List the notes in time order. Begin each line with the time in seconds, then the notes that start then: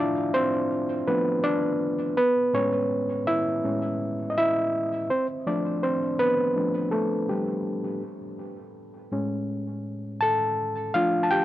Already playing: F3 A3 E4 F4 D5 E5 F5
0.00 D4
0.34 C4 C5
1.07 F3 A3 B3 D4 B4
1.44 D4 D5
2.17 B3 B4
2.53 A2 G#3 C#4 C#5
3.27 E4 E5
3.64 A2 G#3 C#4
4.30 D#5
4.38 E4 E5
5.10 C4 C5
5.46 F3 A3 D4 D5
5.83 C4 C5
6.19 B3 B4
6.56 F3 A3 D4
6.91 A3 A4
7.29 G3 G4
9.12 A2 G#3 C#4
10.21 A4 A5
10.94 F3 A3 D4 F4 F5
11.23 A5
11.31 G4 G5